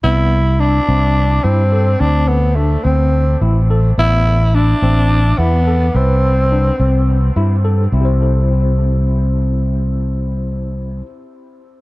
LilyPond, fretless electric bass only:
\new Staff \with { instrumentName = "Fretless electric bass" } { \clef bass \time 7/8 \key c \major \tempo 4 = 107 c,4. c,4 g,4 | d,4. d,4 a,,4 | a,,4. a,,4 e,4 | c,4. c,4 g,4 |
c,2.~ c,8~ | c,2.~ c,8 | }